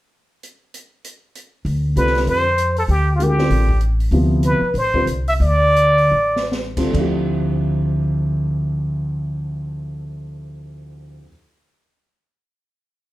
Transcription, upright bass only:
1.65 1.94 D2 medium
1.96 2.25 C2 medium
2.27 2.85 F2 medium
2.88 3.47 D2 medium
3.49 4.08 A1 medium
4.11 4.58 D2 medium
4.61 muted upright bass stroke soft
4.74 5.04 A1 medium
5.06 5.38 C2 medium
5.40 6.09 D2 medium
6.11 6.90 A1 medium
6.94 11.18 D2 medium

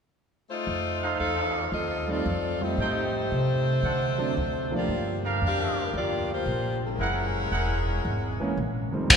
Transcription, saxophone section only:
0.50 1.15 A3 medium
0.50 1.16 D#4 medium
0.50 1.15 F4 medium
0.50 1.15 C5 medium
1.20 1.69 D#4 medium
1.20 1.69 A4 medium
1.20 1.69 C5 medium
1.20 1.69 F5 medium
1.73 2.08 C4 medium
1.73 2.08 F4 medium
1.73 2.08 A4 medium
1.73 2.08 D#5 medium
2.10 2.61 C4 medium
2.10 2.62 F4 medium
2.10 2.62 A4 medium
2.10 2.61 D5 medium
2.62 4.73 A3 medium
2.62 3.84 D#4 medium
2.62 3.84 G4 medium
2.62 4.73 C5 medium
4.76 5.23 A#3 medium
4.76 5.22 F4 medium
4.76 5.22 G4 medium
4.76 5.23 D5 medium
5.46 5.93 D4 medium
5.46 5.93 G4 medium
5.46 5.93 A#4 medium
5.46 5.93 F5 loud
5.97 6.31 A#3 medium
5.97 6.31 F4 medium
5.97 6.31 G4 medium
5.97 6.32 D5 medium
6.32 6.80 A#3 medium
6.32 6.80 F4 medium
6.32 6.80 G4 medium
6.32 6.80 C5 medium
6.85 8.91 G#3 medium
6.85 8.91 C#4 medium
6.85 8.91 E4 medium
6.85 8.91 A#4 medium

